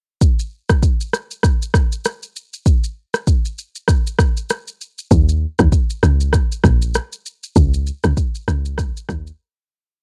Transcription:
0.21 kick, shaker
0.39 shaker
0.69 kick, cross-stick, shaker
0.83 kick, shaker
1.01 shaker
1.13 cross-stick, shaker
1.31 shaker
1.43 kick, cross-stick, shaker
1.62 shaker
1.74 kick, cross-stick, shaker
1.92 shaker
2.05 cross-stick, shaker
2.23 shaker
2.36 shaker
2.53 shaker
2.66 kick, shaker
2.84 shaker
3.14 cross-stick, shaker
3.27 kick, shaker
3.45 shaker
3.58 shaker
3.76 shaker
3.88 kick, cross-stick, shaker
4.07 shaker
4.19 kick, cross-stick, shaker
4.37 shaker
4.50 cross-stick, shaker
4.68 shaker
4.81 shaker
4.98 shaker
5.11 log drum bass D#2, kick, shaker
5.29 shaker
5.59 log drum bass D#2, kick, cross-stick, shaker
5.72 kick, shaker
5.90 shaker
6.03 log drum bass C#2, cross-stick, shaker
6.20 shaker
6.33 kick, cross-stick, shaker
6.52 shaker
6.64 log drum bass A#1, kick, cross-stick, shaker
6.82 shaker
6.94 cross-stick, shaker
7.12 shaker
7.26 shaker
7.43 shaker
7.56 log drum bass C#2, kick, shaker
7.74 shaker
7.87 shaker
8.04 log drum bass C#2, cross-stick, shaker
8.17 kick, shaker
8.35 shaker
8.48 log drum bass C#2, cross-stick, shaker
8.65 shaker
8.78 kick, cross-stick, shaker
8.97 shaker
9.09 log drum bass D#2, kick, cross-stick, shaker
9.27 shaker

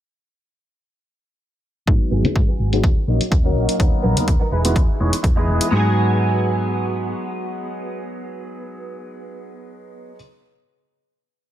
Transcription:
1.87 fingered electric bass G#2, grand piano F#3 G#3 B3 D#4 G#4, kick, closed hi-hat
2.11 fingered electric bass G#1, clean electric guitar B3 F#4 G#4, high conga, shaker
2.24 grand piano F#3 G#3 B3 D#4 G#4, muted fingered electric bass stroke, closed hi-hat, low conga, shaker
2.35 fingered electric bass G#2, kick, closed hi-hat, shaker
2.48 clean electric guitar B3 F#4 G#4, high conga
2.59 fingered electric bass G#1, shaker
2.72 grand piano F#3 G#3 B3 D#4 F#4, closed hi-hat, shaker
2.84 fingered electric bass D#2, kick, closed hi-hat
3.08 fingered electric bass A#1, grand piano F#3 A#3 C#4 D#4 D#5
3.21 muted fingered electric bass stroke, closed hi-hat
3.31 fingered electric bass D#2, muted clean electric guitar stroke, kick, closed hi-hat
3.44 grand piano F#3 A#3 C#4 D#4 A#4, clean electric guitar C#4 D#4 F#4
3.56 fingered electric bass A#1
3.69 closed hi-hat
3.80 fingered electric bass D#2, grand piano F#3 A#3 B3 D#4 A#4, kick, closed hi-hat
4.03 fingered electric bass A#1, clean electric guitar B3 D#4 A#4, high conga, shaker
4.16 grand piano F#3 A#3 B3 D#4 A#4, muted fingered electric bass stroke, closed hi-hat, low conga, shaker
4.27 fingered electric bass D#2, muted clean electric guitar stroke, kick, closed hi-hat, shaker
4.40 clean electric guitar B3 D#4 A#4, high conga
4.51 fingered electric bass E1, clean electric guitar D#4 E4 G#4, analog polysynth B4, shaker
4.65 grand piano E3 G#3 B3 D#4 F#4, analog polysynth B4, closed hi-hat
4.76 fingered electric bass E2, kick, closed hi-hat
5.00 fingered electric bass E1, grand piano E3 G#3 B3 D#4 C#5, shaker
5.13 closed hi-hat
5.23 fingered electric bass E2, muted clean electric guitar stroke, kick, closed hi-hat
5.36 grand piano E3 G#3 B3 G#4 D#5, clean electric guitar D#4 E4 G#4
5.48 fingered electric bass E1, shaker
5.61 closed hi-hat
5.68 fingered electric bass G#2, grand piano F#3 G#3, clean electric guitar B3 F#4
5.72 grand piano B3 D#4 G#4, clean electric guitar G#4

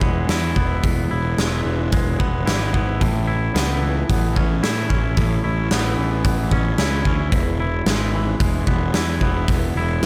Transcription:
Already playing: clean electric guitar E3 G#3 E4
0.01 picked electric bass E1, clean electric guitar B3, kick
0.28 picked electric bass E2, clean electric guitar E4, snare, open hi-hat
0.56 picked electric bass E1, clean electric guitar B3, kick
0.83 picked electric bass E1, clean electric guitar E2, kick, open hi-hat
1.11 picked electric bass E1, clean electric guitar E4
1.38 picked electric bass E1, clean electric guitar G#3, snare, open hi-hat
1.65 picked electric bass E1, clean electric guitar E3
1.92 picked electric bass E1, clean electric guitar G#3, kick, open hi-hat
2.19 picked electric bass E1, clean electric guitar B3, kick
2.46 picked electric bass G#1, clean electric guitar E4, snare, open hi-hat
2.73 picked electric bass G#1, clean electric guitar B3, kick
3.00 picked electric bass A1, clean electric guitar A2, kick, open hi-hat
3.27 clean electric guitar E4
3.54 picked electric bass C#2, clean electric guitar B3, snare, open hi-hat
3.82 clean electric guitar E3
4.09 picked electric bass A1, clean electric guitar B3, kick, open hi-hat
4.36 picked electric bass A1, clean electric guitar C#4, kick
4.63 picked electric bass A2, clean electric guitar E4, snare, open hi-hat
4.90 picked electric bass A1, clean electric guitar C#4, kick
5.17 picked electric bass A1, clean electric guitar A2, kick, open hi-hat
5.44 picked electric bass A1, clean electric guitar E4
5.71 picked electric bass A1, clean electric guitar B3, snare, open hi-hat
5.98 picked electric bass A1, clean electric guitar E3
6.25 picked electric bass A1, clean electric guitar B3, kick, open hi-hat
6.51 picked electric bass A1, clean electric guitar C#4, kick
6.78 picked electric bass C#2, clean electric guitar E4, snare, open hi-hat
7.05 picked electric bass D2, clean electric guitar C#4, kick
7.32 picked electric bass E1, clean electric guitar E2, kick, open hi-hat
7.60 clean electric guitar E4
7.86 picked electric bass G#1, clean electric guitar G#3, snare, open hi-hat
8.15 clean electric guitar E3
8.40 picked electric bass E1, clean electric guitar G#3, kick, open hi-hat
8.67 picked electric bass E1, clean electric guitar B3, kick
8.94 picked electric bass E2, clean electric guitar E4, snare, open hi-hat
9.21 picked electric bass E1, clean electric guitar B3, kick
9.48 picked electric bass E1, clean electric guitar E2, kick, open hi-hat
9.75 picked electric bass E1, clean electric guitar E4
10.02 picked electric bass E1, open hi-hat

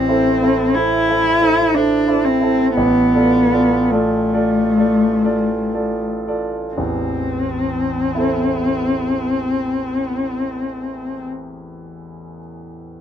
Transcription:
Already playing: grand piano A1, cello C4
0.08 grand piano E4 A4 C5
0.42 grand piano E4 A4 C5
0.74 cello E4, grand piano E4 A4 C5
1.09 grand piano E4 A4 C5
1.42 grand piano E4 A4 C5
1.74 cello D4, grand piano E4 A4 C5
2.07 grand piano E4 A4 C5
2.25 cello C4
2.41 grand piano E4 A4 C5
2.77 grand piano A1, cello B3
3.14 grand piano F4 A4 D5
3.52 grand piano F4 A4 D5
3.91 cello A3, grand piano F4 A4 D5
4.33 grand piano F4 A4 D5
4.78 grand piano F4 A4 D5
5.24 grand piano F4 A4 D5
5.74 grand piano F4 A4 D5
6.27 grand piano F4 A4 D5
6.74 grand piano A1 E2, cello C4
8.15 grand piano E4 A4 C5

